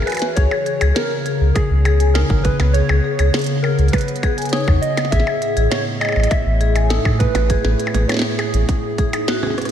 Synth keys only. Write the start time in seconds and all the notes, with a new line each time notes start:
0.06 B4
0.35 C#5
0.95 A#4
1.55 G#4
2.14 A#4
2.43 B4
2.73 C#5
3.62 A#4
3.92 B4
4.51 C#5
4.81 D#5
5.11 E5
5.70 C#5
6.00 D#5
6.30 E5
6.89 A4
7.19 B4
8.08 C#5
8.38 G#4